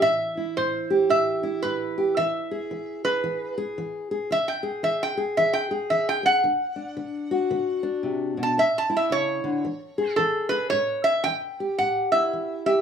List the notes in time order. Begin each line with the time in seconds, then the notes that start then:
Already playing: E3 E4
0.01 A2 E5
0.37 E4
0.57 A2 C5
0.90 G4
1.09 A2 E5
1.43 E4
1.63 A2 B4
1.98 G4
2.17 E3 E5
2.51 G#4
2.71 E3
3.05 G#4 B4
3.24 E3
3.58 G#4
3.78 E3
4.11 G#4
4.31 E3 E5
4.48 G5
4.63 G#4
4.83 E3 E5
5.03 G5
5.17 G#4
5.37 E3 E5
5.53 G5
5.71 G#4
5.90 E3 E5
6.09 G5
6.23 G#4 F#5
6.44 D3
6.76 D4
6.97 D3
7.31 F#4
7.51 D3
7.83 D4
8.03 C3
8.37 B2
8.43 A5
8.58 A2 E5
8.78 A5
8.90 E4
8.97 E5
9.10 C#3 C#5
9.44 D3
9.65 E3
9.98 G#4
10.16 E3 A4
10.49 G#4 B4
10.70 A2 C#5
11.04 E5
11.24 E3 G5
11.60 G4
11.78 A2 F#5
12.12 E4 E5
12.33 E3
12.66 G4 E5